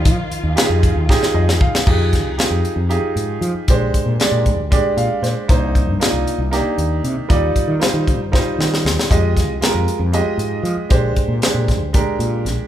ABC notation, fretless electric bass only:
X:1
M:7/8
L:1/16
Q:1/4=116
K:Fdor
V:1 name="Fretless electric bass" clef=bass
F, z2 E,, z F,,2 E,, z2 F,,2 E,, z | F,,3 C,, z F,, z F,,2 z A,,2 F, z | B,,,2 z B,, z B,,2 D,,2 z B,, z B,, z | C,,3 G,, z C,, z C,,2 z E,,2 C, z |
E,,2 z E, z E,2 G,,2 z E,2 E,, z | F,,3 C,, z F,, z F,,2 z A,,2 F, z | B,,,2 z B,, z B,,2 D,,2 z B,,2 B,,, z |]